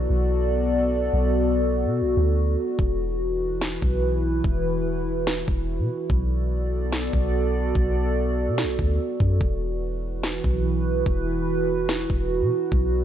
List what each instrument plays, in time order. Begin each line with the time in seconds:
Already playing: analog synth pad B3 F#4 A4 D5
0.10 808-style bass B1
1.13 808-style bass B1
1.86 808-style bass B2
2.01 808-style bass B1
2.17 808-style bass D2
2.79 808-style bass E1, analog synth pad E3 E4 B4, kick
3.61 snare
3.82 808-style bass B1, kick
4.44 808-style bass E1, kick
5.27 snare
5.48 808-style bass E1, kick
5.79 808-style bass B2
6.10 808-style bass B1, analog synth pad B3 F#4 A4 D5, kick
6.92 snare
7.13 808-style bass B1, kick
7.75 808-style bass B1, kick
8.48 808-style bass B2
8.58 snare
8.63 808-style bass B1
8.79 808-style bass D2, kick
9.20 808-style bass F#2, kick
9.41 808-style bass E1, analog synth pad E3 E4 B4, kick
10.23 snare
10.44 808-style bass B1, kick
11.06 808-style bass E1, kick
11.89 snare
12.10 808-style bass E1, kick
12.41 808-style bass B2
12.72 808-style bass B1, analog synth pad B3 A4 D5, kick